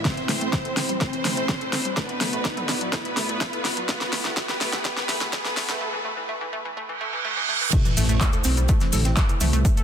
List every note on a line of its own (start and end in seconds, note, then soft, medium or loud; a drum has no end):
0.00 5.81 A2 medium
0.00 5.81 E3 medium
0.00 1.93 A3 medium
0.00 1.93 E4 medium
0.00 riser medium
0.05 0.14 A3 medium
0.05 0.91 C4 medium
0.05 0.91 C5 medium
0.05 1.95 C5 medium
0.05 5.77 B5 medium
0.05 kick loud
0.05 snare medium
0.05 closed hi-hat medium
0.17 0.22 E3 medium
0.17 closed hi-hat soft
0.29 0.40 A3 medium
0.29 snare medium
0.29 open hi-hat loud
0.41 0.49 A3 medium
0.41 closed hi-hat medium
0.53 0.58 A3 medium
0.53 kick loud
0.53 snare medium
0.53 closed hi-hat medium
0.65 0.74 A4 medium
0.65 closed hi-hat medium
0.77 0.82 C4 medium
0.77 snare medium
0.77 open hi-hat medium
0.89 0.94 G3 medium
0.89 closed hi-hat medium
1.01 1.10 A3 medium
1.01 1.87 C4 loud
1.01 1.88 C5 loud
1.01 kick loud
1.01 snare medium
1.01 closed hi-hat soft
1.13 1.18 E3 medium
1.13 closed hi-hat medium
1.25 1.36 A3 medium
1.25 snare medium
1.25 mid tom medium
1.25 open hi-hat loud
1.37 1.45 A3 medium
1.37 closed hi-hat medium
1.49 1.54 A3 medium
1.49 kick loud
1.49 snare medium
1.49 closed hi-hat medium
1.49 mid tom medium
1.61 1.69 A4 medium
1.61 closed hi-hat medium
1.73 1.78 C4 medium
1.73 snare medium
1.73 open hi-hat medium
1.85 1.90 G3 medium
1.85 closed hi-hat medium
1.97 3.87 A2 medium
1.97 2.06 A3 medium
1.97 3.87 B3 medium
1.97 2.84 B3 loud
1.97 3.87 F#4 medium
1.97 2.84 B4 loud
1.97 3.87 D5 medium
1.97 kick loud
1.97 snare medium
1.97 closed hi-hat medium
2.09 2.14 E3 medium
2.09 closed hi-hat medium
2.21 2.32 A3 loud
2.21 snare medium
2.21 mid tom medium
2.21 open hi-hat loud
2.33 2.41 A3 loud
2.33 closed hi-hat medium
2.45 2.50 A3 medium
2.45 kick loud
2.45 snare medium
2.45 closed hi-hat medium
2.57 2.66 A4 medium
2.57 closed hi-hat medium
2.57 mid tom medium
2.69 2.74 B3 loud
2.69 snare medium
2.69 open hi-hat medium
2.81 2.86 F#3 medium
2.81 closed hi-hat medium
2.93 3.02 A3 medium
2.93 3.80 B3 loud
2.93 3.80 B4 loud
2.93 kick loud
2.93 snare medium
2.93 closed hi-hat medium
3.05 3.10 E3 medium
3.05 closed hi-hat medium
3.17 3.28 A3 loud
3.17 snare medium
3.17 open hi-hat loud
3.29 3.38 A3 medium
3.29 closed hi-hat medium
3.41 3.46 A3 medium
3.41 kick loud
3.41 snare medium
3.41 closed hi-hat medium
3.41 mid tom medium
3.53 3.61 A4 medium
3.53 closed hi-hat medium
3.65 3.70 B3 loud
3.65 snare medium
3.65 open hi-hat medium
3.77 3.82 F#3 medium
3.77 closed hi-hat medium
3.89 3.98 A3 medium
3.89 5.79 A3 medium
3.89 4.35 B3 loud
3.89 5.79 E4 medium
3.89 4.35 B4 loud
3.89 5.79 F#5 medium
3.89 5.79 G5 medium
3.89 kick loud
3.89 snare medium
3.89 closed hi-hat medium
4.01 4.06 E3 medium
4.01 snare medium
4.01 closed hi-hat medium
4.13 4.24 A3 loud
4.13 snare medium
4.13 open hi-hat loud
4.25 4.33 A3 loud
4.25 snare medium
4.25 closed hi-hat medium
4.37 4.46 A3 medium
4.37 4.83 B3 loud
4.37 4.83 B4 loud
4.37 kick loud
4.37 snare loud
4.37 closed hi-hat medium
4.49 4.54 E3 medium
4.49 snare medium
4.49 closed hi-hat medium
4.61 4.72 A3 loud
4.61 snare medium
4.61 open hi-hat medium
4.73 4.82 A3 loud
4.73 snare medium
4.73 closed hi-hat medium
4.85 4.94 A3 medium
4.85 5.31 B3 loud
4.85 5.31 B4 loud
4.85 kick loud
4.85 snare medium
4.85 closed hi-hat medium
4.97 5.02 E3 medium
4.97 snare medium
4.97 closed hi-hat medium
5.09 5.20 A3 loud
5.09 snare medium
5.09 mid tom medium
5.09 open hi-hat loud
5.21 5.29 A3 loud
5.21 snare medium
5.21 closed hi-hat medium
5.33 5.42 A3 medium
5.33 5.79 B3 loud
5.33 5.79 B4 loud
5.33 kick loud
5.33 snare medium
5.33 closed hi-hat medium
5.33 mid tom medium
5.45 5.50 E3 medium
5.45 snare medium
5.45 closed hi-hat medium
5.57 5.68 A3 loud
5.57 snare loud
5.57 open hi-hat medium
5.69 5.78 A3 loud
5.69 snare medium
5.69 closed hi-hat medium
5.81 5.90 A3 medium
5.93 5.98 E3 medium
6.05 6.14 A3 medium
6.17 6.22 E3 medium
6.29 6.38 A3 medium
6.41 6.46 E3 medium
6.53 6.62 A3 medium
6.65 6.70 E3 medium
6.77 6.86 A3 medium
6.77 reverse cymbal medium
6.89 6.94 E3 medium
7.01 7.10 A3 medium
7.13 7.18 E3 medium
7.25 7.34 A3 medium
7.37 7.42 E3 medium
7.49 7.58 A3 medium
7.61 7.66 E3 medium
7.72 9.84 A2 medium
7.72 9.84 E3 medium
7.72 7.82 A3 medium
7.72 9.63 A3 medium
7.72 9.63 E4 medium
7.72 9.84 B4 medium
7.72 9.63 C5 medium
7.72 kick loud
7.72 closed hi-hat medium
7.72 crash loud
7.72 sub drop medium
7.72 cabasa medium
7.85 7.90 E3 medium
7.85 closed hi-hat medium
7.85 cabasa soft
7.97 8.07 A1 loud
7.97 8.08 A3 loud
7.97 closed hi-hat medium
7.97 open hi-hat loud
7.97 cabasa medium
8.09 8.19 A1 medium
8.09 8.17 A3 loud
8.09 closed hi-hat medium
8.09 cabasa soft
8.21 kick loud
8.21 snare loud
8.21 clap loud
8.21 closed hi-hat medium
8.21 cabasa medium
8.33 8.41 A4 medium
8.33 closed hi-hat medium
8.33 cabasa soft
8.44 8.55 B1 loud
8.44 8.50 C4 loud
8.44 closed hi-hat medium
8.44 open hi-hat medium
8.44 cabasa medium
8.57 8.67 B1 medium
8.57 8.62 G3 medium
8.57 closed hi-hat medium
8.57 cabasa soft
8.68 8.78 A3 medium
8.68 kick loud
8.68 closed hi-hat medium
8.68 cabasa medium
8.80 8.89 E3 medium
8.80 snare soft
8.80 closed hi-hat medium
8.80 cabasa soft
8.92 9.03 A1 medium
8.92 8.98 A4 medium
8.92 closed hi-hat medium
8.92 mid tom medium
8.92 open hi-hat loud
8.92 cabasa medium
9.05 9.15 A1 medium
9.05 9.16 C4 medium
9.05 snare soft
9.05 closed hi-hat medium
9.05 cabasa soft
9.16 9.26 A3 medium
9.16 kick loud
9.16 snare loud
9.16 clap loud
9.16 closed hi-hat medium
9.16 mid tom medium
9.16 cabasa medium
9.29 9.34 E3 medium
9.29 closed hi-hat medium
9.29 cabasa soft
9.40 9.51 C2 medium
9.40 9.52 A3 loud
9.40 closed hi-hat medium
9.40 mid tom medium
9.40 open hi-hat medium
9.40 cabasa loud
9.53 9.63 C2 medium
9.53 9.61 A3 loud
9.53 closed hi-hat medium
9.53 closed hi-hat soft
9.53 cabasa soft
9.65 9.70 A3 medium
9.65 9.84 B3 medium
9.65 9.84 F#4 medium
9.65 9.84 D5 medium
9.65 kick loud
9.65 closed hi-hat medium
9.65 cabasa medium
9.77 9.84 A4 medium
9.77 closed hi-hat medium
9.77 cabasa soft